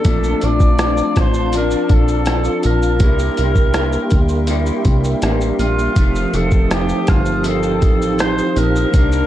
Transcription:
Already playing: A4
0.04 A#1 A#2 F3 A3 C4 D4 F4 D5 F5 A5, kick, closed hi-hat, shaker
0.09 A5
0.24 shaker
0.41 A#1 F3 A3 D4 D5, closed hi-hat, shaker
0.60 kick, shaker
0.79 cross-stick, closed hi-hat, shaker
0.97 shaker
1.16 A1, kick, cross-stick, closed hi-hat, shaker
1.20 C5
1.34 shaker
1.53 F3, closed hi-hat, shaker
1.57 D4 A#4
1.71 shaker
1.89 A#1, kick, closed hi-hat, shaker
1.94 A4
2.08 shaker
2.26 cross-stick, closed hi-hat, shaker
2.44 shaker
2.63 A#1 A#4, closed hi-hat, shaker
2.82 shaker
2.99 C2 C3 G3 A#3 D4 D#4 A#4 E5 G5 C6, kick, closed hi-hat, shaker
3.03 A#3 E4 G4
3.08 E5
3.19 shaker
3.37 C2 G3 A#3 E4, closed hi-hat, shaker
3.56 kick, shaker
3.74 cross-stick, closed hi-hat, shaker
3.93 shaker
4.11 D2, kick, closed hi-hat, shaker
4.29 shaker
4.47 C3 G3 A#3 E4, closed hi-hat, shaker
4.66 shaker
4.85 C2, kick, closed hi-hat, shaker
5.04 shaker
5.22 A1 C3 G3 A#3, cross-stick, closed hi-hat, shaker
5.41 shaker
5.59 A#1 F4, closed hi-hat, shaker
5.79 shaker
5.95 F1 F2 D#3 F3 A3 C4 D#4 C5 F5 A5 D#6, kick, closed hi-hat, shaker
6.00 C4 G4
6.15 shaker
6.33 F1 A3 C4 A4, closed hi-hat, shaker
6.37 D#3
6.51 kick, shaker
6.71 G4, cross-stick, closed hi-hat, shaker
6.89 shaker
7.07 G1 F4, kick, cross-stick, closed hi-hat, shaker
7.26 shaker
7.43 F2 D#3 A4, closed hi-hat, shaker
7.49 C4
7.63 shaker
7.82 A1, kick, closed hi-hat, shaker
8.02 shaker
8.19 C5, cross-stick, closed hi-hat, shaker
8.38 shaker
8.56 A#1 A#4, closed hi-hat, shaker
8.76 shaker
8.91 C2 C3 A#3 D4 D#4 D5 A#5 D6, kick, closed hi-hat, shaker
8.96 A#3 D4 G4
9.12 shaker

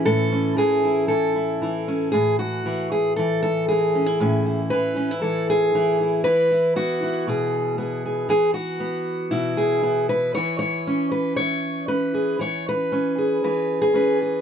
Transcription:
Already playing: E3 C#4 E4
0.05 A2 A4
0.32 C#4
0.56 E3 G#4
0.84 E4
1.08 E3 A4
1.36 E4
1.62 E3 E4
1.88 C#4
2.12 A2 G#4
2.39 F#4
2.66 E3
2.92 G#4
3.16 E3 A4
3.43 A4
3.68 E3 G#4
3.95 C#4
4.06 E4
4.20 A2 C#4 E4
4.46 E4
4.70 E3 B4
4.96 C#4
5.11 E4
5.22 E3 A4
5.50 G#4
5.75 E3 E4
6.00 E4
6.24 E3 B4
6.51 E4
6.76 B3 F#4
7.03 E4
7.27 B2 G#4
7.78 B3 G#4
8.06 G#4
8.29 E3 G#4
8.54 F#4
8.80 B3
9.31 B2 E4
9.57 G#4
9.83 B3 E4
10.09 B4
10.35 E3 C#5
10.59 C#5
10.87 C#4
11.12 B4
11.36 E3 C#5
11.88 C#4 B4
12.14 G#4
12.39 E3 C#5
12.69 B4
12.92 C#4
13.18 G#4
13.44 E3 B4
13.82 G#4
13.94 C#4 B4
14.22 G#4

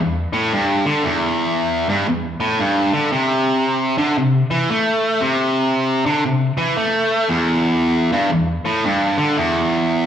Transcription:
0.00 E2
0.33 A2
0.53 G2
0.86 D3
1.04 E2
1.89 G2
2.08 E2
2.40 A2
2.60 G2
2.93 D3
3.12 C3
3.98 D3
4.18 C3
4.51 E3
4.70 A3
5.21 C3
6.06 D3
6.26 C3
6.58 E3
6.77 A3
7.28 E2
8.12 G2
8.32 E2
8.65 A2
8.85 G2
9.18 D3
9.37 E2

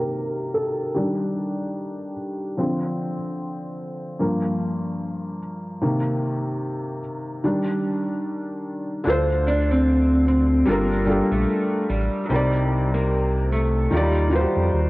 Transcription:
Already playing: C3 D#3 A#3 G4 A#4
0.54 A4
0.94 D#3 G3 D4 G4
2.57 D3 F3 C4
4.20 G2 F3 A#3
5.82 C3 D#3 A#3
7.44 D#3 G3 D4
9.04 D2 D3 D4 F4
9.08 A4 C5
9.48 D4
9.71 C4
10.28 C4
10.66 G1 G3 A#3 D4 F4
10.70 A4 A#4
11.05 G3 D4 F4
11.10 G4 A4
11.32 A#1 A3
11.90 A1 G3
12.25 C3 F#3
12.30 C2 G3 C4 D#4 A#4
12.35 D5
12.94 A#3
13.52 A3
13.91 D#2 D#3 G3 D#4 F4
13.95 G4 D5
14.30 D#3 D#4 F4
14.34 F#4 C5
14.41 G4
14.57 F2
14.74 D#2

